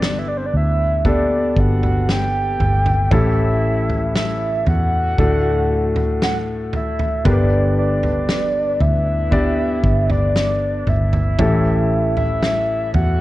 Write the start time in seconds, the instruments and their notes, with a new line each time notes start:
Already playing: fingered electric bass G1, grand piano G2 D3 B3 D4 G4 B4, soft synth lead D5
0.02 snare
0.18 soft synth lead E5
0.28 soft synth lead D5
0.37 soft synth lead C5
0.46 soft synth lead D5
0.54 fingered electric bass D2, soft synth lead E5
1.05 grand piano B3 D4 G4 A4, soft synth lead D5, kick, floor tom
1.56 fingered electric bass G1, soft synth lead F#5, kick
1.83 floor tom
2.09 soft synth lead G5, snare
2.60 fingered electric bass G1, floor tom
2.86 floor tom
3.11 fingered electric bass A1, grand piano A2 E3 C#4 E4 G4 A4, kick, floor tom
3.15 soft synth lead E5
3.90 floor tom
4.16 soft synth lead E5, snare
4.67 fingered electric bass E2, soft synth lead F#5, floor tom
5.18 fingered electric bass D2, grand piano A2 A3 D4 F#4 A4, kick, floor tom
5.96 floor tom
6.22 soft synth lead F#5, snare
6.73 soft synth lead E5, floor tom
6.99 floor tom
7.25 fingered electric bass G1, grand piano G2 D3 B3 D4 G4 A#4, soft synth lead D5, kick, floor tom
7.32 grand piano B4
7.78 soft synth lead D5
8.03 floor tom
8.29 snare
8.81 fingered electric bass D2, soft synth lead E5, floor tom
9.31 grand piano B3 D4 G4 D5, kick, floor tom
9.84 fingered electric bass G1, kick
10.10 soft synth lead D5, floor tom
10.36 snare
10.87 fingered electric bass G1, soft synth lead E5, floor tom
11.13 floor tom
11.39 fingered electric bass A1, grand piano A2 E3 C#4 E4 G4 A4, kick, floor tom
12.17 soft synth lead E5, floor tom
12.43 snare
12.94 fingered electric bass E2, soft synth lead F#5, floor tom